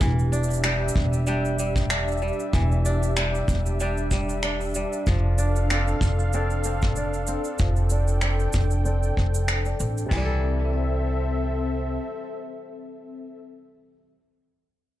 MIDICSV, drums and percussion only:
0, 0, Header, 1, 2, 480
1, 0, Start_track
1, 0, Tempo, 631579
1, 6, Time_signature, 4, 2, 24, 8
1, 11400, End_track
2, 0, Start_track
2, 0, Title_t, "Drums"
2, 6, Note_on_c, 9, 36, 124
2, 8, Note_on_c, 9, 69, 44
2, 82, Note_off_c, 9, 36, 0
2, 84, Note_off_c, 9, 69, 0
2, 146, Note_on_c, 9, 69, 19
2, 222, Note_off_c, 9, 69, 0
2, 251, Note_on_c, 9, 69, 67
2, 327, Note_off_c, 9, 69, 0
2, 330, Note_on_c, 9, 69, 56
2, 384, Note_off_c, 9, 69, 0
2, 384, Note_on_c, 9, 69, 32
2, 406, Note_off_c, 9, 69, 0
2, 406, Note_on_c, 9, 69, 47
2, 482, Note_off_c, 9, 69, 0
2, 484, Note_on_c, 9, 26, 93
2, 484, Note_on_c, 9, 69, 42
2, 560, Note_off_c, 9, 26, 0
2, 560, Note_off_c, 9, 69, 0
2, 672, Note_on_c, 9, 69, 73
2, 727, Note_on_c, 9, 36, 98
2, 748, Note_off_c, 9, 69, 0
2, 803, Note_off_c, 9, 36, 0
2, 860, Note_on_c, 9, 69, 32
2, 936, Note_off_c, 9, 69, 0
2, 963, Note_on_c, 9, 69, 38
2, 1039, Note_off_c, 9, 69, 0
2, 1103, Note_on_c, 9, 69, 21
2, 1179, Note_off_c, 9, 69, 0
2, 1208, Note_on_c, 9, 69, 80
2, 1284, Note_off_c, 9, 69, 0
2, 1336, Note_on_c, 9, 36, 93
2, 1341, Note_on_c, 9, 69, 31
2, 1412, Note_off_c, 9, 36, 0
2, 1417, Note_off_c, 9, 69, 0
2, 1445, Note_on_c, 9, 26, 90
2, 1445, Note_on_c, 9, 69, 36
2, 1521, Note_off_c, 9, 26, 0
2, 1521, Note_off_c, 9, 69, 0
2, 1581, Note_on_c, 9, 69, 19
2, 1609, Note_off_c, 9, 69, 0
2, 1609, Note_on_c, 9, 69, 17
2, 1652, Note_off_c, 9, 69, 0
2, 1652, Note_on_c, 9, 69, 14
2, 1686, Note_off_c, 9, 69, 0
2, 1686, Note_on_c, 9, 69, 11
2, 1732, Note_off_c, 9, 69, 0
2, 1732, Note_on_c, 9, 69, 9
2, 1769, Note_off_c, 9, 69, 0
2, 1769, Note_on_c, 9, 69, 8
2, 1821, Note_off_c, 9, 69, 0
2, 1821, Note_on_c, 9, 69, 30
2, 1897, Note_off_c, 9, 69, 0
2, 1926, Note_on_c, 9, 36, 102
2, 1928, Note_on_c, 9, 69, 42
2, 2002, Note_off_c, 9, 36, 0
2, 2004, Note_off_c, 9, 69, 0
2, 2066, Note_on_c, 9, 69, 20
2, 2142, Note_off_c, 9, 69, 0
2, 2169, Note_on_c, 9, 69, 72
2, 2245, Note_off_c, 9, 69, 0
2, 2302, Note_on_c, 9, 69, 33
2, 2378, Note_off_c, 9, 69, 0
2, 2406, Note_on_c, 9, 26, 94
2, 2406, Note_on_c, 9, 69, 44
2, 2482, Note_off_c, 9, 26, 0
2, 2482, Note_off_c, 9, 69, 0
2, 2545, Note_on_c, 9, 69, 20
2, 2621, Note_off_c, 9, 69, 0
2, 2646, Note_on_c, 9, 36, 83
2, 2648, Note_on_c, 9, 69, 65
2, 2722, Note_off_c, 9, 36, 0
2, 2724, Note_off_c, 9, 69, 0
2, 2782, Note_on_c, 9, 69, 34
2, 2858, Note_off_c, 9, 69, 0
2, 2887, Note_on_c, 9, 69, 41
2, 2963, Note_off_c, 9, 69, 0
2, 3021, Note_on_c, 9, 69, 21
2, 3097, Note_off_c, 9, 69, 0
2, 3124, Note_on_c, 9, 69, 76
2, 3125, Note_on_c, 9, 36, 60
2, 3200, Note_off_c, 9, 69, 0
2, 3201, Note_off_c, 9, 36, 0
2, 3262, Note_on_c, 9, 69, 30
2, 3338, Note_off_c, 9, 69, 0
2, 3365, Note_on_c, 9, 26, 89
2, 3366, Note_on_c, 9, 69, 38
2, 3441, Note_off_c, 9, 26, 0
2, 3442, Note_off_c, 9, 69, 0
2, 3502, Note_on_c, 9, 69, 20
2, 3515, Note_off_c, 9, 69, 0
2, 3515, Note_on_c, 9, 69, 15
2, 3529, Note_off_c, 9, 69, 0
2, 3529, Note_on_c, 9, 69, 13
2, 3544, Note_off_c, 9, 69, 0
2, 3544, Note_on_c, 9, 69, 11
2, 3563, Note_off_c, 9, 69, 0
2, 3563, Note_on_c, 9, 69, 9
2, 3578, Note_off_c, 9, 69, 0
2, 3578, Note_on_c, 9, 69, 8
2, 3592, Note_off_c, 9, 69, 0
2, 3592, Note_on_c, 9, 69, 6
2, 3607, Note_off_c, 9, 69, 0
2, 3607, Note_on_c, 9, 69, 74
2, 3683, Note_off_c, 9, 69, 0
2, 3745, Note_on_c, 9, 69, 28
2, 3821, Note_off_c, 9, 69, 0
2, 3850, Note_on_c, 9, 69, 40
2, 3852, Note_on_c, 9, 36, 119
2, 3926, Note_off_c, 9, 69, 0
2, 3928, Note_off_c, 9, 36, 0
2, 4090, Note_on_c, 9, 69, 76
2, 4166, Note_off_c, 9, 69, 0
2, 4225, Note_on_c, 9, 69, 31
2, 4301, Note_off_c, 9, 69, 0
2, 4335, Note_on_c, 9, 26, 84
2, 4335, Note_on_c, 9, 69, 39
2, 4411, Note_off_c, 9, 26, 0
2, 4411, Note_off_c, 9, 69, 0
2, 4466, Note_on_c, 9, 69, 20
2, 4542, Note_off_c, 9, 69, 0
2, 4568, Note_on_c, 9, 36, 94
2, 4575, Note_on_c, 9, 69, 71
2, 4644, Note_off_c, 9, 36, 0
2, 4651, Note_off_c, 9, 69, 0
2, 4707, Note_on_c, 9, 69, 33
2, 4783, Note_off_c, 9, 69, 0
2, 4810, Note_on_c, 9, 69, 42
2, 4886, Note_off_c, 9, 69, 0
2, 4942, Note_on_c, 9, 69, 20
2, 5018, Note_off_c, 9, 69, 0
2, 5045, Note_on_c, 9, 69, 76
2, 5121, Note_off_c, 9, 69, 0
2, 5182, Note_on_c, 9, 69, 29
2, 5189, Note_on_c, 9, 36, 103
2, 5258, Note_off_c, 9, 69, 0
2, 5265, Note_off_c, 9, 36, 0
2, 5288, Note_on_c, 9, 69, 40
2, 5364, Note_off_c, 9, 69, 0
2, 5423, Note_on_c, 9, 69, 20
2, 5499, Note_off_c, 9, 69, 0
2, 5526, Note_on_c, 9, 69, 76
2, 5602, Note_off_c, 9, 69, 0
2, 5658, Note_on_c, 9, 69, 30
2, 5734, Note_off_c, 9, 69, 0
2, 5765, Note_on_c, 9, 69, 40
2, 5773, Note_on_c, 9, 36, 108
2, 5841, Note_off_c, 9, 69, 0
2, 5849, Note_off_c, 9, 36, 0
2, 5899, Note_on_c, 9, 69, 20
2, 5975, Note_off_c, 9, 69, 0
2, 6002, Note_on_c, 9, 69, 68
2, 6078, Note_off_c, 9, 69, 0
2, 6138, Note_on_c, 9, 69, 30
2, 6214, Note_off_c, 9, 69, 0
2, 6243, Note_on_c, 9, 26, 77
2, 6243, Note_on_c, 9, 69, 36
2, 6319, Note_off_c, 9, 26, 0
2, 6319, Note_off_c, 9, 69, 0
2, 6381, Note_on_c, 9, 69, 18
2, 6457, Note_off_c, 9, 69, 0
2, 6481, Note_on_c, 9, 69, 64
2, 6491, Note_on_c, 9, 36, 90
2, 6557, Note_off_c, 9, 69, 0
2, 6567, Note_off_c, 9, 36, 0
2, 6617, Note_on_c, 9, 69, 30
2, 6693, Note_off_c, 9, 69, 0
2, 6729, Note_on_c, 9, 69, 39
2, 6805, Note_off_c, 9, 69, 0
2, 6863, Note_on_c, 9, 69, 20
2, 6939, Note_off_c, 9, 69, 0
2, 6971, Note_on_c, 9, 36, 54
2, 7047, Note_off_c, 9, 36, 0
2, 7101, Note_on_c, 9, 69, 69
2, 7177, Note_off_c, 9, 69, 0
2, 7206, Note_on_c, 9, 26, 79
2, 7206, Note_on_c, 9, 69, 36
2, 7282, Note_off_c, 9, 26, 0
2, 7282, Note_off_c, 9, 69, 0
2, 7337, Note_on_c, 9, 69, 19
2, 7413, Note_off_c, 9, 69, 0
2, 7447, Note_on_c, 9, 69, 67
2, 7523, Note_off_c, 9, 69, 0
2, 7582, Note_on_c, 9, 69, 30
2, 7658, Note_off_c, 9, 69, 0
2, 7685, Note_on_c, 9, 43, 89
2, 7685, Note_on_c, 9, 55, 80
2, 7686, Note_on_c, 9, 36, 84
2, 7761, Note_off_c, 9, 43, 0
2, 7761, Note_off_c, 9, 55, 0
2, 7762, Note_off_c, 9, 36, 0
2, 11400, End_track
0, 0, End_of_file